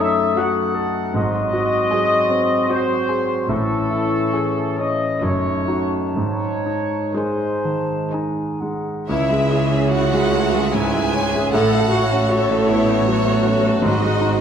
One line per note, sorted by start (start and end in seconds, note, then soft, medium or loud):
0.00 1.12 F#2 medium
0.00 0.19 F#3 medium
0.00 1.12 A3 medium
0.00 1.12 D#4 medium
0.00 0.62 D#4 soft
0.00 0.37 F#4 soft
0.00 0.22 A4 medium
0.00 1.11 A4 medium
0.00 0.39 E5 medium
0.00 0.94 D#6 medium
0.37 0.96 F#3 medium
0.37 0.97 D#4 medium
0.37 1.00 F#4 medium
0.37 1.16 F#5 medium
0.37 0.97 A5 medium
0.74 1.14 A4 medium
1.14 1.77 G#1 medium
1.14 3.45 G#2 medium
1.14 1.76 G#2 medium
1.14 3.50 F#3 medium
1.14 3.50 C4 medium
1.14 3.50 F#4 medium
1.14 2.67 D#5 loud
1.14 3.50 C6 medium
1.53 2.15 F#4 medium
1.91 2.51 F#3 medium
1.91 2.51 C4 medium
1.91 2.54 G#4 medium
1.91 2.51 G#5 medium
2.30 2.94 C4 medium
2.69 3.30 F#3 medium
2.69 3.30 C4 medium
2.69 3.33 F#4 medium
2.69 3.50 C5 medium
2.69 3.30 G#5 medium
3.09 3.50 G#4 medium
3.48 4.17 A1 medium
3.48 5.18 A2 medium
3.48 4.17 A2 medium
3.48 5.20 E3 medium
3.48 5.23 C#4 medium
3.48 4.92 E4 medium
3.48 4.76 A4 medium
3.48 4.93 C#6 medium
3.91 4.60 E4 soft
4.34 5.01 E3 medium
4.34 5.01 C#4 medium
4.34 5.04 G#4 medium
4.34 5.01 G#5 medium
4.79 5.23 C#4 soft
4.79 5.23 D#5 medium
5.21 5.97 F#1 medium
5.21 6.13 F#2 medium
5.21 5.97 F#2 medium
5.21 5.91 D#3 soft
5.21 6.15 A3 soft
5.21 8.68 D#4 medium
5.21 5.92 D#4 soft
5.21 8.69 D#4 medium
5.21 5.99 C#5 medium
5.21 7.11 A5 soft
5.21 5.93 A5 soft
5.68 6.12 D#4 soft
5.68 6.12 F#4 soft
6.15 6.96 G#1 soft
6.15 6.96 G#2 medium
6.15 9.04 G#2 soft
6.15 8.73 G#3 soft
6.15 7.14 C#5 medium
6.66 7.45 D#4 soft
7.14 7.89 D#3 soft
7.14 7.93 G#3 soft
7.14 7.89 D#4 soft
7.14 8.13 C5 medium
7.14 7.89 G#5 soft
7.14 7.67 G#5 soft
7.65 8.42 D#3 soft
7.65 8.14 A5 medium
8.12 8.86 D#3 soft
8.12 8.85 D#4 soft
8.12 8.90 D#4 soft
8.12 8.86 G#5 soft
8.12 8.62 G#5 soft
8.60 9.08 G#3 soft
8.60 9.07 F#5 soft
9.07 11.48 C#2 medium
9.07 11.48 C#3 medium
9.07 9.47 E4 medium
9.07 9.28 E4 medium
9.07 9.28 C#5 medium
9.07 9.87 E5 medium
9.30 9.63 G#3 soft
9.30 9.51 G#4 soft
9.30 9.51 E5 soft
9.50 9.71 E4 soft
9.50 9.84 E4 medium
9.50 9.91 G#4 medium
9.50 9.71 C#5 soft
9.72 10.03 C#4 medium
9.72 9.92 G#4 medium
9.72 9.92 E5 soft
9.91 10.24 E4 soft
9.91 10.11 E4 soft
9.91 10.72 F#4 medium
9.91 10.10 C#5 medium
9.91 10.72 F#5 medium
10.12 10.44 G#3 medium
10.12 10.31 G#4 soft
10.12 10.31 E5 soft
10.29 10.52 A3 soft
10.29 10.51 E4 medium
10.29 10.50 C#5 medium
10.51 10.85 G#3 medium
10.51 10.72 G#4 soft
10.51 10.72 E5 soft
10.71 11.05 G#2 medium
10.71 10.90 E4 medium
10.71 11.12 E4 medium
10.71 10.90 C#5 soft
10.71 11.52 G#5 loud
10.92 11.25 G#3 soft
10.92 11.12 G#4 soft
10.92 11.12 E5 medium
11.12 11.45 C#4 medium
11.12 11.32 E4 soft
11.12 11.51 G#4 medium
11.12 11.32 C#5 soft
11.31 11.53 G#3 medium
11.31 11.51 G#4 medium
11.31 11.51 E5 medium
11.51 13.79 A1 medium
11.51 13.79 A2 medium
11.51 13.81 A2 medium
11.51 11.91 A4 medium
11.51 11.70 A4 medium
11.51 11.70 C#5 medium
11.51 12.28 F#5 loud
11.71 12.04 A3 medium
11.71 11.91 F#4 soft
11.71 11.91 A4 soft
11.91 12.29 F#4 medium
11.91 12.22 F#4 medium
11.91 12.11 A4 soft
11.91 12.10 C#5 medium
12.12 12.42 C#4 medium
12.12 12.30 F#4 medium
12.12 12.30 A4 medium
12.29 12.61 F#4 medium
12.29 12.68 A4 medium
12.29 12.48 A4 medium
12.29 13.83 C#5 loud
12.29 12.48 C#5 medium
12.51 12.80 A3 medium
12.51 12.69 F#4 medium
12.51 12.69 A4 medium
12.67 12.88 B3 soft
12.67 13.05 E4 medium
12.67 12.88 A4 medium
12.67 12.88 C#5 medium
12.89 13.18 A3 medium
12.89 13.07 F#4 medium
12.89 13.08 A4 medium
13.06 13.37 F#3 medium
13.06 14.41 F#4 medium
13.10 13.26 A4 medium
13.10 13.26 C#5 medium
13.25 13.56 A3 medium
13.25 13.46 F#4 medium
13.25 13.46 A4 medium
13.46 13.76 C#4 medium
13.46 13.66 A4 medium
13.46 13.65 C#5 medium
13.64 13.83 A3 soft
13.68 13.86 F#4 medium
13.68 13.86 A4 medium
13.82 14.41 G#1 medium
13.82 14.41 G#2 medium
13.82 14.41 D#5 medium
13.86 14.03 C4 medium
13.86 14.03 C5 medium
14.04 14.35 G#3 soft
14.04 14.25 D#4 soft
14.04 14.25 D#5 soft
14.21 14.41 D#4 medium
14.26 14.41 C4 medium
14.26 14.41 C5 medium